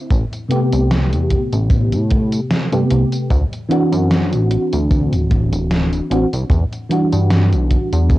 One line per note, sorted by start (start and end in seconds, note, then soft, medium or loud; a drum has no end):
0.11 0.25 A1 loud
0.11 kick loud
0.11 closed hi-hat medium
0.11 tambourine soft
0.33 closed hi-hat soft
0.33 tambourine soft
0.48 2.66 C3 medium
0.48 2.67 A3 medium
0.48 2.67 B3 medium
0.48 2.68 G4 loud
0.48 closed hi-hat medium
0.73 1.14 C2 medium
0.73 closed hi-hat soft
0.73 tambourine medium
0.91 snare loud
0.91 closed hi-hat medium
0.91 tambourine soft
1.13 1.37 E2 medium
1.13 closed hi-hat soft
1.13 tambourine soft
1.30 kick medium
1.30 closed hi-hat loud
1.53 1.94 A1 medium
1.53 closed hi-hat soft
1.53 tambourine medium
1.70 kick loud
1.70 closed hi-hat medium
1.70 tambourine soft
1.92 2.40 A2 loud
1.92 closed hi-hat soft
1.92 tambourine soft
2.11 kick loud
2.11 closed hi-hat medium
2.32 closed hi-hat soft
2.32 tambourine medium
2.51 snare loud
2.51 closed hi-hat medium
2.51 tambourine soft
2.71 2.84 G2 medium
2.71 3.28 C3 medium
2.71 3.28 A3 medium
2.71 3.29 B3 medium
2.71 3.29 G4 medium
2.71 closed hi-hat soft
2.71 tambourine soft
2.90 3.05 C2 medium
2.90 closed hi-hat medium
3.12 closed hi-hat soft
3.12 tambourine medium
3.30 3.45 D2 loud
3.30 kick loud
3.30 closed hi-hat medium
3.30 tambourine soft
3.53 closed hi-hat soft
3.53 tambourine soft
3.69 6.06 E3 loud
3.69 6.06 C4 medium
3.69 6.07 D4 medium
3.69 6.08 F#4 loud
3.69 closed hi-hat medium
3.92 4.34 F#2 medium
3.92 closed hi-hat soft
3.92 tambourine medium
4.11 snare loud
4.11 closed hi-hat medium
4.11 tambourine soft
4.33 4.57 A1 medium
4.33 closed hi-hat soft
4.33 tambourine soft
4.51 closed hi-hat medium
4.73 5.14 D2 medium
4.73 closed hi-hat soft
4.73 tambourine medium
4.91 kick loud
4.91 closed hi-hat medium
4.91 tambourine soft
5.12 5.52 D1 loud
5.12 closed hi-hat soft
5.12 tambourine soft
5.31 kick loud
5.31 closed hi-hat medium
5.52 6.00 D1 medium
5.52 closed hi-hat soft
5.52 tambourine medium
5.71 snare loud
5.71 closed hi-hat medium
5.71 tambourine soft
5.93 closed hi-hat soft
5.93 tambourine soft
6.10 6.25 A1 loud
6.10 6.25 E3 medium
6.10 6.25 C4 medium
6.10 6.25 D4 medium
6.10 6.25 F#4 medium
6.10 closed hi-hat medium
6.33 6.45 C2 medium
6.33 closed hi-hat soft
6.33 tambourine medium
6.50 6.64 E2 loud
6.50 kick loud
6.50 closed hi-hat medium
6.50 tambourine soft
6.73 closed hi-hat soft
6.73 tambourine soft
6.89 8.19 E3 medium
6.89 8.19 G3 medium
6.89 8.19 D4 medium
6.89 8.19 F#4 medium
6.89 closed hi-hat medium
7.13 7.54 G2 medium
7.13 closed hi-hat soft
7.13 tambourine medium
7.30 snare loud
7.30 closed hi-hat medium
7.30 tambourine soft
7.53 7.77 B1 loud
7.53 closed hi-hat soft
7.53 tambourine soft
7.71 kick medium
7.71 closed hi-hat medium
7.93 8.19 E2 loud
7.93 closed hi-hat soft
7.93 tambourine medium
8.10 kick loud
8.10 closed hi-hat medium
8.10 tambourine soft